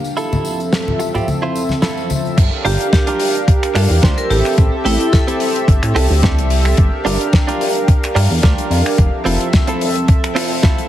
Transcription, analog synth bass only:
2.38 2.50 G1 loud
2.65 2.77 G1 medium
3.75 3.87 G2 loud
3.90 4.00 E2 medium
4.03 4.15 D2 medium
4.30 4.42 A1 medium
4.58 4.70 A1 loud
4.85 4.97 A1 medium
5.68 5.80 G1 loud
5.83 5.93 A2 loud
5.95 6.07 C2 medium
6.10 6.39 D2 medium
6.38 6.74 C2 medium
6.78 6.90 G1 loud
7.05 7.17 G1 medium
8.15 8.27 G2 loud
8.30 8.41 E2 medium
8.43 8.55 D2 medium
8.70 8.82 F2 medium
8.98 9.10 F1 loud
9.26 9.38 F1 medium

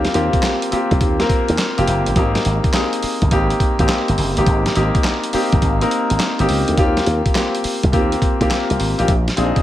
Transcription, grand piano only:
0.00 0.14 A#3 medium
0.00 0.14 C4 medium
0.00 0.15 F4 medium
0.00 0.15 G4 loud
0.00 1.21 A#4 medium
0.14 0.67 A#3 medium
0.14 0.68 C4 medium
0.14 0.68 F4 medium
0.14 0.68 G4 loud
0.71 1.13 A#3 medium
0.71 1.14 C4 medium
0.71 1.14 F4 medium
0.71 1.14 G4 medium
1.20 1.69 A#3 loud
1.20 1.69 C4 medium
1.20 1.69 F4 medium
1.20 1.70 A#4 loud
1.77 2.13 A#3 medium
1.77 2.13 C4 medium
1.77 2.13 F4 medium
1.77 2.13 G4 loud
2.16 2.69 A#3 medium
2.16 2.70 C4 medium
2.16 2.70 D#4 medium
2.16 2.70 G4 loud
2.74 3.27 A#3 medium
2.74 3.27 C4 medium
2.74 3.27 D#4 medium
2.74 3.28 G#4 medium
3.31 3.73 A#3 medium
3.31 3.73 C4 medium
3.31 3.74 D#4 medium
3.31 3.74 G4 loud
3.79 4.29 A#3 medium
3.79 4.29 C4 medium
3.79 4.29 D#4 medium
3.79 4.29 G4 medium
4.37 4.72 A#3 medium
4.37 4.73 C4 medium
4.37 4.73 D#4 medium
4.37 4.73 G4 loud
4.75 5.29 A#3 medium
4.75 5.29 C4 medium
4.75 5.29 D#4 medium
4.75 5.30 G4 loud
5.33 5.75 A#3 medium
5.33 5.75 C4 medium
5.33 5.75 D#4 medium
5.33 5.76 G4 loud
5.81 6.31 A#3 loud
5.81 6.31 C4 medium
5.81 6.31 D#4 medium
5.81 6.31 A#4 loud
6.40 6.75 A#3 medium
6.40 6.75 C4 medium
6.40 6.75 D#4 medium
6.40 6.75 G4 loud
6.78 7.31 A#3 medium
6.78 7.31 C4 medium
6.78 7.32 F4 medium
6.78 7.32 G4 loud
7.35 7.89 A#3 medium
7.35 7.89 C4 medium
7.35 7.89 F4 medium
7.35 7.89 G4 medium
7.92 8.34 A#3 medium
7.92 8.35 C4 medium
7.92 8.35 F4 medium
7.92 8.35 G4 medium
8.40 8.90 A#3 medium
8.40 8.90 C4 medium
8.40 8.91 F4 medium
8.40 8.91 G4 loud
8.98 9.08 A#3 medium
8.98 9.08 C4 medium
8.98 9.08 F4 medium
8.98 9.09 G4 medium
9.36 9.62 C4 medium
9.36 9.46 D4 medium
9.36 9.62 F4 medium
9.36 9.62 G#4 loud
9.43 9.62 D#4 medium

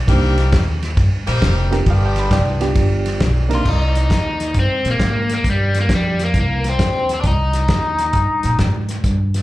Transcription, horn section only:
0.08 0.65 G3 medium
0.08 0.65 A#3 loud
0.08 0.65 C4 medium
0.08 0.65 D#4 medium
0.08 0.65 G4 loud
1.26 1.78 G3 loud
1.26 1.78 A#3 loud
1.26 1.78 C4 loud
1.26 1.78 D#4 loud
1.26 1.78 G4 loud
1.86 2.64 G3 medium
1.86 2.64 B3 medium
1.86 2.64 D4 medium
1.86 2.64 F4 medium
1.86 2.64 G4 loud

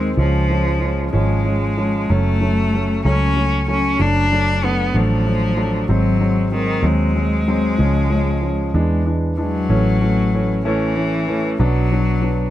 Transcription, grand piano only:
0.00 0.12 D#3 medium
0.00 0.12 G#3 soft
0.00 0.12 C4 medium
0.17 0.43 F3 medium
0.17 0.44 G#3 soft
0.17 0.44 C#4 medium
0.49 0.75 F3 medium
0.49 0.76 G#3 soft
0.49 0.76 C#4 medium
0.80 1.06 F3 soft
0.80 1.07 G#3 soft
0.80 1.07 C#4 medium
1.13 1.39 F3 medium
1.13 1.39 G#3 medium
1.13 1.39 C#4 medium
1.44 1.71 F3 soft
1.44 1.71 G#3 soft
1.44 1.71 C#4 soft
1.77 2.03 F3 medium
1.77 2.03 G#3 soft
1.77 2.04 C#4 medium
2.09 2.35 F#3 medium
2.09 2.35 A3 medium
2.09 2.36 C#4 medium
2.41 2.67 F#3 medium
2.41 2.67 A3 soft
2.41 2.67 C#4 medium
2.73 2.99 F#3 medium
2.73 2.99 A3 soft
2.73 3.00 C#4 medium
3.05 3.31 F#3 medium
3.05 3.31 A3 medium
3.05 3.31 C#4 medium
3.37 3.62 F#3 soft
3.37 3.63 A3 soft
3.37 3.63 C#4 soft
3.68 3.94 F#3 medium
3.68 3.94 A3 medium
3.68 3.94 C#4 medium
3.99 4.25 F#3 medium
3.99 4.25 A3 soft
3.99 4.26 D4 medium
4.32 4.57 F#3 medium
4.32 4.57 A3 soft
4.32 4.58 D4 medium
4.63 4.89 F#3 soft
4.63 4.88 A3 soft
4.63 4.89 D4 medium
4.94 5.20 F#3 medium
4.94 5.20 A3 medium
4.94 5.20 D4 medium
5.25 5.51 F#3 soft
5.25 5.52 A3 soft
5.25 5.52 D4 medium
5.57 5.83 F#3 medium
5.57 5.83 A3 medium
5.57 5.83 D4 medium
5.89 6.15 F#3 medium
5.89 6.15 G#3 medium
5.89 6.15 C4 medium
6.20 6.46 F#3 medium
6.20 6.46 G#3 medium
6.20 6.47 C4 medium
6.52 6.78 F#3 medium
6.52 6.78 G#3 soft
6.52 6.78 C4 medium
6.83 7.09 F#3 medium
6.83 7.09 G#3 medium
6.83 7.09 C4 medium
7.15 7.41 F#3 soft
7.15 7.41 G#3 soft
7.15 7.42 C4 medium
7.48 7.73 F#3 medium
7.48 7.73 G#3 medium
7.48 7.74 C4 medium
7.78 8.05 F3 medium
7.78 8.05 G#3 medium
7.78 8.05 C#4 medium
8.10 8.36 F3 medium
8.10 8.37 G#3 soft
8.10 8.37 C#4 medium
8.41 8.68 F3 medium
8.41 8.69 G#3 soft
8.41 8.69 C#4 soft
8.74 9.01 E3 medium
8.74 9.01 G#3 medium
8.74 9.01 D4 medium
9.05 9.32 E3 soft
9.05 9.32 G#3 soft
9.05 9.33 D4 soft
9.37 9.64 E3 medium
9.37 9.64 G#3 soft
9.37 9.64 D4 medium
9.69 9.96 E3 medium
9.69 9.96 A3 medium
9.69 9.96 C#4 medium
10.01 10.28 E3 medium
10.01 10.28 A3 medium
10.01 10.28 C#4 medium
10.34 10.60 E3 medium
10.34 10.60 A3 soft
10.34 10.60 C#4 medium
10.65 10.91 E3 medium
10.65 10.91 A3 medium
10.65 10.92 C#4 medium
10.96 11.23 E3 medium
10.96 11.22 A3 soft
10.96 11.23 C#4 medium
11.28 11.54 E3 medium
11.28 11.54 A3 medium
11.28 11.54 C#4 medium
11.59 11.86 F#3 medium
11.59 11.86 B3 medium
11.59 11.86 D4 medium
11.92 12.18 F#3 medium
11.92 12.18 B3 soft
11.92 12.18 D4 medium
12.22 12.48 F#3 soft
12.22 12.48 B3 medium
12.22 12.49 D4 medium

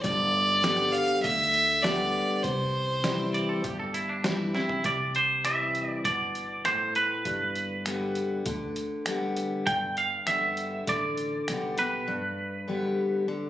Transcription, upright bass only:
0.04 0.98 G1 loud
1.24 2.18 D2 medium
2.44 3.39 C2 medium
3.64 4.59 G1 medium
4.85 5.79 C2 medium
6.05 6.99 G1 medium
7.25 8.20 G1 medium
8.46 9.41 D2 medium
9.67 10.14 G1 medium
10.27 10.78 G1 medium
10.88 11.39 A1 medium
11.48 11.99 B1 medium

